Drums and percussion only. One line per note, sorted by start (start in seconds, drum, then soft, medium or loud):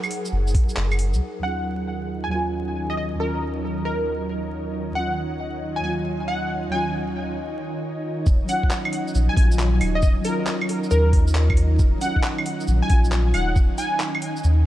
0.04 claves medium
0.04 shaker soft
0.11 open hi-hat medium
0.25 shaker medium
0.47 shaker soft
0.55 kick loud
0.55 open hi-hat medium
0.69 shaker medium
0.77 clap loud
0.92 claves medium
0.92 shaker soft
0.99 open hi-hat medium
1.14 shaker medium
1.58 shaker medium
1.80 shaker soft
2.02 shaker medium
2.46 shaker medium
3.78 shaker medium
4.66 shaker medium
5.32 shaker soft
5.54 shaker medium
5.98 shaker medium
6.42 shaker medium
6.87 shaker medium
7.09 shaker soft
7.31 shaker medium
8.26 kick loud
8.26 shaker medium
8.49 open hi-hat medium
8.49 shaker medium
8.63 kick medium
8.71 clap loud
8.71 shaker medium
8.85 claves medium
8.93 open hi-hat medium
9.08 shaker soft
9.15 shaker medium
9.37 kick loud
9.37 open hi-hat medium
9.52 shaker medium
9.59 clap loud
9.59 shaker medium
9.81 open hi-hat medium
9.81 claves medium
10.02 kick loud
10.02 shaker medium
10.25 open hi-hat medium
10.25 shaker medium
10.47 clap loud
10.47 shaker medium
10.61 claves medium
10.69 open hi-hat medium
10.84 shaker soft
10.91 shaker medium
11.13 kick loud
11.13 open hi-hat medium
11.28 shaker medium
11.35 clap loud
11.35 shaker medium
11.50 kick loud
11.50 claves medium
11.57 open hi-hat medium
11.79 kick loud
11.79 shaker medium
12.01 open hi-hat medium
12.01 shaker medium
12.16 kick medium
12.24 clap loud
12.24 shaker medium
12.38 claves medium
12.46 open hi-hat medium
12.60 shaker soft
12.68 shaker medium
12.90 kick loud
12.90 open hi-hat medium
13.05 shaker medium
13.12 clap loud
13.12 shaker medium
13.34 open hi-hat medium
13.34 claves medium
13.56 kick loud
13.56 shaker medium
13.78 open hi-hat medium
13.78 shaker medium
14.00 clap loud
14.00 shaker medium
14.15 claves soft
14.22 open hi-hat medium
14.37 shaker soft
14.44 shaker medium